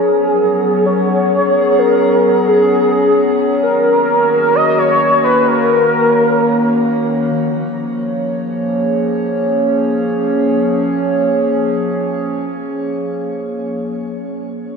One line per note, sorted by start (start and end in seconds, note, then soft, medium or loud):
0.00 3.63 F#3 medium
0.00 3.63 B3 medium
0.00 7.32 C#4 medium
0.00 0.86 G#4 loud
0.00 1.20 A#4 medium
0.00 7.32 C#5 medium
0.86 1.80 C#5 loud
0.93 5.11 G#4 medium
1.78 2.49 A#4 loud
2.48 3.40 G#4 medium
3.63 7.32 D#3 medium
3.63 4.57 A#4 loud
3.81 7.32 F#4 medium
3.85 13.78 A#3 medium
4.55 4.80 D#5 loud
4.78 5.24 C#5 loud
5.24 5.49 B4 loud
5.47 7.09 A#4 loud
7.32 13.78 F3 medium
7.47 13.78 C#5 medium
7.97 13.78 C#4 medium
8.21 13.78 G#4 medium